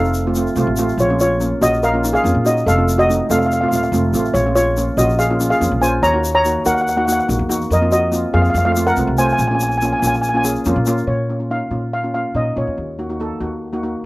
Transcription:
Already playing: upright bass F1, steel pan A3 C4 D#4 A4 F5
0.04 shaker
0.14 shaker
0.27 steel pan A3 C4 F4
0.35 steel pan A3 C4 F4, shaker
0.47 shaker
0.56 upright bass C2, steel pan A3 C4 F4, shaker
0.67 upright bass A1
0.77 steel pan A3 C4 F4, shaker
0.89 shaker
0.97 upright bass A#1, steel pan F4 C#5, shaker
1.10 steel pan A#3 C#4 F4
1.20 steel pan F4 C#5, shaker
1.40 steel pan A#3 C#4 F4, shaker
1.61 upright bass A#1, steel pan A#3 C#4 F4 F#4 D#5, shaker
1.74 shaker
1.83 steel pan A#4 F5, shaker
1.93 steel pan A#3 C#4 F4
2.04 steel pan A#3 C#4 D#4, shaker
2.13 steel pan G#4 F5, shaker
2.24 upright bass F2, steel pan A#3 C#4 F4, shaker
2.34 upright bass A#2
2.45 steel pan A#3 C#4 D#4 F#4 D#5, shaker
2.57 shaker
2.66 upright bass F1, steel pan A4 F5, shaker
2.77 steel pan A3 C4 F4
2.89 shaker
2.98 steel pan F#4 D#5, shaker
3.09 steel pan A3 C4 D#4, shaker
3.30 upright bass F1, steel pan A3 C4 F4 A4 F5, shaker
3.39 steel pan F5, shaker
3.46 steel pan F5
3.52 steel pan F5, shaker
3.61 steel pan A3 C4 F4 F5
3.68 upright bass D#1, steel pan F5, shaker
3.73 steel pan A3 C4 F4 F5
3.84 steel pan F5
3.92 upright bass F1, steel pan A3 C4 F4, shaker
4.13 upright bass A1, steel pan A3 C4 F4, shaker
4.25 shaker
4.34 upright bass A#1, steel pan F4 C#5, shaker
4.46 steel pan A#3 C#4 F4
4.55 steel pan F4 C#5, shaker
4.77 steel pan A#3 C#4 F4, shaker
4.97 upright bass A#1, steel pan A#3 C#4 F4 F#4 D#5, shaker
5.09 shaker
5.19 steel pan G#4 F5, shaker
5.30 steel pan A#3 C#4 F4
5.40 steel pan A#3 C#4 F4, shaker
5.50 steel pan G#4 F5, shaker
5.60 upright bass F2, steel pan A#3 C#4 F4, shaker
5.71 upright bass A#1
5.81 steel pan A#3 C#4 F4 C5 G#5, shaker
6.02 upright bass D#2, steel pan C#5 A#5, shaker
6.13 steel pan A#3 D#4 F#4
6.24 shaker
6.35 steel pan C#5 A#5
6.45 steel pan A#3 D#4 F#4, shaker
6.65 upright bass D#2, steel pan A#3 D#4 F#4 A#4 F#5, shaker
6.75 steel pan F#5, shaker
6.81 steel pan F#5
6.88 steel pan F#5, shaker
6.97 steel pan A#3 D#4 F#4 F#5
7.05 steel pan A#3 D#4 F#4 F#5, shaker
7.12 steel pan F#5
7.20 steel pan F#5
7.28 upright bass A#1, steel pan A#3 D#4 F#4, shaker
7.39 upright bass E2
7.49 steel pan A#3 D#4 F#4, shaker
7.61 shaker
7.70 upright bass F2, steel pan A#4 D#5, shaker
7.81 steel pan A#3 C4 F4
7.92 steel pan F#4 D#5, shaker
8.12 steel pan A#3 C4 F4, shaker
8.33 upright bass F2, steel pan A#3 C4 F4 G#4 F5
8.42 steel pan F5, shaker
8.50 steel pan F5
8.54 upright bass F2, steel pan F5, shaker
8.65 steel pan A3 C4 F4 F5
8.72 steel pan F5, shaker
8.77 steel pan A3 C4 F4
8.87 steel pan A#4 F#5, shaker
8.96 upright bass C2, steel pan A3 C4 F4, shaker
9.07 upright bass C2
9.18 steel pan A3 C4 F4 C5 G#5, shaker
9.26 steel pan G#5, shaker
9.33 steel pan G#5
9.39 upright bass A#1, steel pan G#5, shaker
9.48 steel pan A#3 C#4 F4 G#5
9.55 steel pan G#5
9.60 steel pan G#5, shaker
9.69 steel pan G#5, shaker
9.78 steel pan G#5, shaker
9.82 steel pan A#3 C#4 F4
9.93 steel pan G#5
10.00 upright bass A#1, steel pan A#3 C#4 F4 G#5, shaker
10.07 steel pan G#5
10.14 steel pan G#5, shaker
10.22 steel pan G#5, shaker
10.29 steel pan G#5
10.34 steel pan A#3 C#4 F4 G#5
10.44 steel pan A#3 C#4 G#4 G#5, shaker
10.55 shaker
10.65 upright bass F2, steel pan A#3 C#4 F4, shaker
10.76 upright bass A#2
10.86 steel pan A#3 C#4 F4, shaker
10.98 shaker
11.07 upright bass A#2, steel pan C#5
11.29 steel pan A#3 C#4 F4
11.40 steel pan A#3 C#4 F4
11.50 steel pan A#3 C#4 D#4 F5
11.71 upright bass A#2, steel pan A#3 C#4 F4
11.93 steel pan F5
12.03 steel pan A#3 C#4 F4
12.14 steel pan A#3 C#4 F4 F5
12.34 upright bass A#2, steel pan A#3 C#4 D#4 D#5
12.56 upright bass A#2, steel pan A#3 C#4 F4 C#5
12.67 upright bass E2
12.78 upright bass D#2
12.99 steel pan A#3 D#4 F#4
13.09 steel pan A#3 D#4 F#4
13.20 steel pan A#3 D#4 A4
13.40 upright bass D#2, steel pan A#3 D#4 F#4
13.73 steel pan A#3 D#4 F#4
13.83 steel pan A#3 D#4 F#4

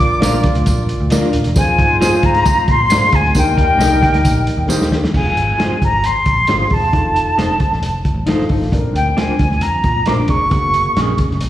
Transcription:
Already playing: picked electric bass A#1, horn section A#3 F4 D5, flute D6
0.20 picked electric bass A#1, grand piano D4 F4 A#4 C5, clean electric guitar D4 F4 A#4, snare, closed hi-hat, tambourine
0.28 grand piano D5
0.43 kick, closed hi-hat
0.55 picked electric bass D2, closed hi-hat
0.66 picked electric bass A#1, kick, closed hi-hat, tambourine
0.89 closed hi-hat
1.00 picked electric bass D2
1.10 picked electric bass D2, grand piano D4 F4 A#4 D5, clean electric guitar D4 F4 A#4, snare, closed hi-hat, tambourine
1.23 snare
1.33 picked electric bass D#1, closed hi-hat
1.44 picked electric bass E1, snare, closed hi-hat
1.55 picked electric bass F2, horn section G#3 F4 C5, grand piano C4 F4 G#4 C5, flute G#5, kick, closed hi-hat, tambourine
1.79 picked electric bass G#2, kick, closed hi-hat
2.01 grand piano C4 F4 G#4 C5, clean electric guitar F4 G#4 C5, snare, closed hi-hat, tambourine
2.12 muted picked electric bass stroke
2.23 picked electric bass G#2, flute A#5, kick, closed hi-hat
2.35 snare, closed hi-hat
2.45 kick, closed hi-hat, tambourine
2.68 picked electric bass A#2, flute C6, kick, closed hi-hat
2.90 picked electric bass G#2, grand piano C4 F4 G#4 D5, clean electric guitar F4 G#4 C5, snare, closed hi-hat, tambourine
3.03 snare
3.12 picked electric bass D2, flute G#5, kick, closed hi-hat
3.25 snare
3.35 picked electric bass D#2, horn section G3 D#4 A#4, grand piano A#3 D#4 G4 A#4, flute G5, kick, closed hi-hat, tambourine
3.58 kick, closed hi-hat
3.79 picked electric bass C2, clean electric guitar A#3 D#4 G4, grand piano A#3 D#4 G4 A#4, snare, closed hi-hat, tambourine
4.03 kick, closed hi-hat
4.12 picked electric bass D2, snare, closed hi-hat
4.25 picked electric bass A#1, kick, closed hi-hat, tambourine
4.47 closed hi-hat
4.57 picked electric bass D#2
4.68 picked electric bass D#2, grand piano A#3 D#4 G4 C5, clean electric guitar A#3 D#4 G4, snare, tambourine
4.81 snare
4.91 picked electric bass D#2, snare
5.03 picked electric bass E2, snare
5.13 picked electric bass F1, grand piano C4 F4 G#4, flute G#5, kick, crash
5.36 picked electric bass G#1, closed hi-hat
5.58 clean electric guitar F4 G#4 C5, snare, closed hi-hat
5.70 muted picked electric bass stroke
5.82 picked electric bass G#1, flute A#5, kick, closed hi-hat
6.04 flute C6, closed hi-hat
6.26 picked electric bass A#1, kick, closed hi-hat
6.47 picked electric bass G#1, grand piano C4 F4 G4, clean electric guitar F4 G#4 C5, snare, closed hi-hat
6.60 snare
6.69 picked electric bass E1, grand piano C4 F4 G#4, flute A5, kick, open hi-hat
6.92 picked electric bass F1, grand piano D#4 F4 A4, kick, closed hi-hat
7.16 closed hi-hat
7.38 picked electric bass F1, clean electric guitar D#4 A4 C5, snare, closed hi-hat
7.60 kick, closed hi-hat
7.71 picked electric bass A1, snare
7.82 picked electric bass F1, closed hi-hat
8.05 kick, closed hi-hat
8.14 picked electric bass A1
8.26 picked electric bass A1, grand piano D#4 F4 A4, clean electric guitar D#4 A4 C5, snare, closed hi-hat
8.40 snare
8.49 picked electric bass G#1, grand piano D#4 F4 A4, kick, open hi-hat
8.60 picked electric bass A1, snare
8.72 picked electric bass A#1, grand piano C4 D4 A#4, kick, closed hi-hat
8.94 picked electric bass D2, flute G5, closed hi-hat
9.17 clean electric guitar D4 F4 C5, flute G#5, snare, closed hi-hat
9.28 muted picked electric bass stroke
9.39 picked electric bass D2, kick, closed hi-hat
9.51 snare
9.61 picked electric bass F2, flute A#5, closed hi-hat
9.84 picked electric bass A#2, kick, closed hi-hat
10.06 picked electric bass A#1, grand piano C4 D4 A#4, clean electric guitar D4 F4 C5, flute D6, snare, closed hi-hat
10.28 picked electric bass F1, grand piano C4 D4 G#4, flute C#6, kick, closed hi-hat
10.49 picked electric bass F#1, grand piano A#3 F#4 G#4, kick, closed hi-hat
10.74 closed hi-hat
10.97 picked electric bass A#1, clean electric guitar C#4 G#4 A#4, snare, closed hi-hat
11.18 kick, closed hi-hat
11.31 picked electric bass F#1, snare
11.41 picked electric bass A#1, closed hi-hat

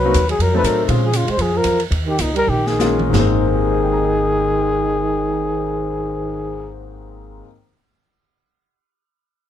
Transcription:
Already playing: upright bass C2, trombone F#3, trumpet B4
0.05 grand piano A#3 C4 D#4 F#4
0.14 upright bass D#2, kick, hi-hat pedal, ride
0.28 trombone F#3, trumpet G#4, ride
0.38 upright bass F2, trombone F#3, trumpet A#4, kick, ride
0.50 trombone F#3, grand piano A3 C4
0.55 grand piano D#4 A4, trumpet B4
0.61 upright bass A2, trombone F#3, trumpet A#4, kick, hi-hat pedal, ride
0.88 upright bass A#2, grand piano G#3 C4 C#4 F4, kick, ride
1.02 trombone F3, trumpet G#4
1.13 trombone C#3, trumpet F4, hi-hat pedal, ride
1.26 trombone G#3, muted upright bass stroke, ride
1.30 trumpet C5
1.38 upright bass F2, trombone F3, kick, ride
1.42 trumpet G#4
1.53 trombone F3
1.57 trumpet A#4
1.64 upright bass E2, cross-stick, hi-hat pedal, ride
1.80 ride
1.91 upright bass D#2, kick, ride
2.06 trombone D#3, trumpet G4
2.19 upright bass C#2, trombone A#2, trumpet D#4, hi-hat pedal, ride
2.33 trombone G3, trumpet A#4, ride
2.47 upright bass A#1, trombone D#3, trumpet G4
2.66 trombone D#3, trumpet G#4, snare
2.79 grand piano G#3 A#3 C#4 F4, snare, hi-hat pedal
2.99 mid tom
3.08 grand piano G#2 D#3
3.13 upright bass G#1, trombone D#3, grand piano G#3 A#3, trumpet G#4, snare, floor tom, splash
3.19 grand piano C4
3.47 grand piano D#4
3.54 grand piano G4
3.63 grand piano A#4
3.72 grand piano D#5
3.82 grand piano G5
3.93 grand piano A#5
4.04 grand piano D#6

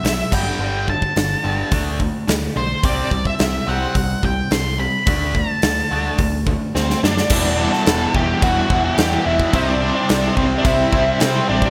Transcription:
0.03 picked electric bass B1, overdriven electric guitar B2 F#3, lead electric guitar E5, snare, open hi-hat
0.31 picked electric bass G1, overdriven electric guitar G2 D3 G3, lead electric guitar G5, kick, crash
0.59 picked electric bass G1, overdriven electric guitar G2 D3 G3
0.88 overdriven electric guitar G2 D3, lead electric guitar A5, kick
1.02 kick
1.16 picked electric bass G1, overdriven electric guitar G2 D3, snare, open hi-hat
1.44 picked electric bass G1, overdriven electric guitar G2 D3 G3
1.71 picked electric bass D2, overdriven electric guitar D3 A3 D4, kick, open hi-hat
2.00 overdriven electric guitar D3 A3, kick
2.27 picked electric bass D2, overdriven electric guitar D3 A3, snare, open hi-hat
2.56 picked electric bass B1, overdriven electric guitar D3 A3, lead electric guitar C5
2.83 picked electric bass C2, overdriven electric guitar C3 G3 C4, lead electric guitar D5, kick, open hi-hat
3.11 picked electric bass C2, overdriven electric guitar C3 G3, kick
3.25 lead electric guitar E5, kick
3.39 picked electric bass C2, overdriven electric guitar C3 G3, snare, open hi-hat
3.67 picked electric bass C2, overdriven electric guitar C3 G3 C4, lead electric guitar F#5
3.95 picked electric bass C2, overdriven electric guitar C3 G3, kick, open hi-hat
4.23 picked electric bass C2, overdriven electric guitar C3 G3, lead electric guitar G5, kick
4.51 picked electric bass C2, overdriven electric guitar C3 G3, lead electric guitar C6, snare, open hi-hat
4.79 overdriven electric guitar C3 G3, lead electric guitar B5
5.06 picked electric bass D2, overdriven electric guitar D3 A3 D4, kick, open hi-hat
5.35 overdriven electric guitar D3 A3, lead electric guitar A5, kick
5.62 picked electric bass D2, overdriven electric guitar D3 A3, snare, open hi-hat
5.91 picked electric bass D2, overdriven electric guitar D3 A3 D4
6.18 picked electric bass D2, overdriven electric guitar D3 A3, kick, open hi-hat
6.47 overdriven electric guitar D3 A3, kick
6.75 picked electric bass D2, overdriven electric guitar D3 A3, lead electric guitar C4, snare
6.90 snare
7.03 picked electric bass F#2, overdriven electric guitar D3 A3, lead electric guitar D4, snare
7.17 snare
7.30 picked electric bass E1, overdriven electric guitar E2 B2 E3 G3 B3 E4, kick, crash
7.58 overdriven electric guitar E2 B2 E3 G3 B3 E4
7.72 lead electric guitar A4, snare
7.86 picked electric bass E1, overdriven electric guitar E2 B2 E3 G3 B3 E4, snare, crash
8.14 picked electric bass E1, overdriven electric guitar E2 B2 E3 G3 B3 E4, lead electric guitar G4, kick
8.42 picked electric bass E1, overdriven electric guitar E2 B2 E3 G3 B3 E4, lead electric guitar F#4, kick, crash
8.70 picked electric bass E1, overdriven electric guitar E2 B2 E3 G3 B3 E4, kick
8.84 lead electric guitar F#4
8.95 picked electric bass E2, overdriven electric guitar E2 B2 G3 B3 E4, lead electric guitar G4, snare, crash
9.00 overdriven electric guitar E3
9.26 picked electric bass E1, overdriven electric guitar E2 B2 E3 G3 B3 E4, lead electric guitar E4
9.40 kick
9.53 picked electric bass C2, overdriven electric guitar C3 G3 C4 E4, lead electric guitar D4, kick, crash
9.81 overdriven electric guitar C3 G3 C4 E4
9.95 lead electric guitar D4
10.09 picked electric bass C2, overdriven electric guitar C3 G3 C4 E4, snare, crash
10.36 picked electric bass C2, overdriven electric guitar C3 G3 C4 E4, lead electric guitar C4, kick
10.58 lead electric guitar D4
10.64 picked electric bass C2, overdriven electric guitar C3 G3 C4 E4, lead electric guitar E4, kick, crash
10.91 picked electric bass C2, overdriven electric guitar C3 G3 C4 E4, kick
11.19 overdriven electric guitar C3 G3 C4 E4, picked electric bass C3, lead electric guitar C4, snare, crash
11.48 picked electric bass A1, overdriven electric guitar C3 G3 C4 E4, lead electric guitar D4
11.62 kick

